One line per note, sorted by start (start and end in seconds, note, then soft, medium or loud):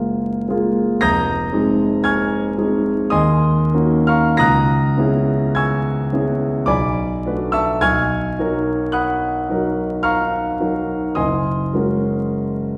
0.00 0.48 G#3 soft
0.00 0.50 A#3 soft
0.00 0.50 F4 soft
0.00 0.50 G#4 soft
0.00 0.45 A#4 medium
0.00 0.45 D#5 medium
0.00 0.45 F#5 medium
0.00 0.48 A#5 medium
0.48 0.96 G#3 soft
0.48 0.97 A#3 soft
0.48 0.97 F4 soft
0.48 0.97 G#4 soft
1.01 1.51 F1 medium
1.01 2.00 A#5 loud
1.01 2.00 D#6 loud
1.01 2.00 G6 loud
1.01 2.04 A#6 loud
1.53 2.53 G#3 soft
1.53 2.53 C4 soft
1.53 2.53 D#4 medium
1.53 2.53 G#4 medium
2.04 3.09 G#5 medium
2.04 3.09 C#6 medium
2.04 3.08 F6 medium
2.04 3.12 G#6 loud
2.58 3.09 G#3 soft
2.58 3.09 C4 soft
2.58 3.09 D#4 soft
2.58 3.09 G#4 medium
3.10 3.73 D#2 medium
3.10 4.04 D#5 medium
3.10 4.04 G#5 medium
3.10 4.04 C6 medium
3.10 4.07 D#6 loud
3.73 4.35 A#3 soft
3.73 4.35 C#4 soft
3.73 4.35 D#4 soft
3.73 4.35 F#4 medium
4.07 4.37 F5 medium
4.07 4.38 A#5 medium
4.07 4.38 C#6 medium
4.07 4.39 F6 medium
4.37 4.96 C#2 medium
4.37 5.52 A#5 loud
4.37 5.52 D#6 medium
4.37 5.52 F#6 medium
4.37 5.55 A#6 loud
4.97 6.07 B3 medium
4.97 6.08 C#4 soft
4.97 6.08 E4 soft
4.97 6.08 G#4 medium
5.55 6.64 G#5 medium
5.55 6.64 C#6 medium
5.55 6.64 E6 medium
5.55 6.67 G#6 medium
6.13 6.64 B3 soft
6.13 6.64 C#4 soft
6.13 6.65 E4 soft
6.13 6.65 G#4 medium
6.66 7.22 B1 medium
6.66 7.48 D5 medium
6.66 7.48 G#5 medium
6.66 7.48 B5 medium
6.66 7.51 D6 loud
7.25 7.77 A3 soft
7.25 7.77 D4 soft
7.25 7.78 F#4 soft
7.25 7.78 B4 medium
7.52 7.79 E5 medium
7.52 7.79 A5 medium
7.52 7.79 C#6 medium
7.52 7.80 E6 medium
7.81 8.36 B1 medium
7.81 8.90 G#5 medium
7.81 8.90 C#6 medium
7.81 8.90 F6 medium
7.81 8.94 G#6 loud
8.39 9.46 F#3 soft
8.39 9.47 D#4 soft
8.39 9.46 F#4 soft
8.39 9.47 A#4 medium
8.92 10.00 F#5 medium
8.92 10.01 B5 medium
8.92 10.00 D#6 medium
8.92 10.04 F#6 medium
9.49 10.57 F#3 soft
9.49 10.57 D#4 soft
9.49 10.57 F#4 soft
9.49 10.57 A#4 soft
10.03 11.13 F5 medium
10.03 11.13 A#5 medium
10.03 11.13 C#6 medium
10.03 11.16 F6 loud
10.60 11.13 F#3 soft
10.60 11.13 D#4 soft
10.60 11.13 F#4 soft
10.60 11.13 A#4 soft
11.15 11.71 F#1 medium
11.15 12.77 D#5 medium
11.15 12.77 G#5 medium
11.15 12.77 C6 medium
11.15 12.77 D#6 medium
11.74 12.77 G#3 soft
11.74 12.77 C#4 soft
11.74 12.77 F#4 soft
11.74 12.77 A#4 soft